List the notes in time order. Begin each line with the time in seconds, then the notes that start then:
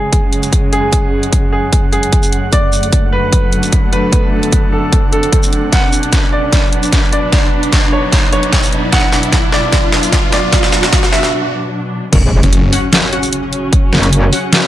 Already playing: F#2 C#3 G#3 C#4 G#4 F#5, riser
0.13 kick, closed hi-hat
0.33 closed hi-hat
0.43 closed hi-hat, shaker
0.53 kick, closed hi-hat
0.73 G#4, closed hi-hat
0.93 kick, closed hi-hat
1.23 closed hi-hat
1.33 kick, closed hi-hat
1.53 G#4
1.73 kick, closed hi-hat
1.92 G#4, closed hi-hat
2.03 closed hi-hat
2.13 kick, closed hi-hat
2.23 shaker
2.33 closed hi-hat
2.53 D3 F#3 A3 D5, kick, closed hi-hat
2.73 shaker
2.79 D4, closed hi-hat
2.93 kick, closed hi-hat
3.13 A4 B4
3.33 kick, closed hi-hat
3.53 closed hi-hat
3.63 closed hi-hat, shaker
3.73 kick, closed hi-hat
3.93 B4, closed hi-hat
4.12 kick, closed hi-hat
4.43 closed hi-hat
4.52 kick, closed hi-hat
4.72 A4
4.92 kick, closed hi-hat
5.12 A4, closed hi-hat
5.23 closed hi-hat
5.33 kick, closed hi-hat
5.43 shaker
5.53 closed hi-hat
5.72 B2 F#3 D4 F#5, kick, snare, closed hi-hat
5.90 B4, shaker
6.03 closed hi-hat
6.13 kick, snare, closed hi-hat
6.33 D5
6.53 kick, snare, closed hi-hat
6.73 closed hi-hat
6.83 closed hi-hat, shaker
6.93 kick, snare, closed hi-hat
7.13 D5, closed hi-hat
7.33 kick, snare, closed hi-hat
7.63 closed hi-hat
7.73 kick, snare, closed hi-hat
7.93 C#5
8.12 kick, snare, closed hi-hat
8.33 C#5, closed hi-hat
8.43 closed hi-hat
8.53 kick, snare, closed hi-hat
8.63 shaker
8.73 closed hi-hat
8.92 F#5, kick, snare, closed hi-hat
9.13 snare, shaker
9.23 closed hi-hat
9.32 kick, snare, closed hi-hat
9.52 D5, snare
9.72 kick, snare, closed hi-hat
9.92 snare, closed hi-hat
10.03 closed hi-hat, shaker
10.13 kick, snare, closed hi-hat
10.33 D5, snare, closed hi-hat
10.53 kick, snare, closed hi-hat
10.63 snare
10.73 snare, shaker
10.83 snare, closed hi-hat
10.93 kick, snare, closed hi-hat
11.03 snare
11.12 E5, snare
11.23 snare
12.13 F#1 C#3 F#3 C#4, kick, closed hi-hat, crash, impact
12.23 E1 F#4
12.43 F#1, closed hi-hat
12.53 closed hi-hat
12.73 C#4 F#4 F#5, open hi-hat
12.93 snare, closed hi-hat
13.13 C#4 F#4 F#5, closed hi-hat
13.23 closed hi-hat, shaker
13.33 closed hi-hat
13.53 closed hi-hat
13.73 kick, closed hi-hat
13.93 F#1, snare
14.03 closed hi-hat
14.13 closed hi-hat
14.33 C#4 F#4 F#5, open hi-hat
14.53 snare, closed hi-hat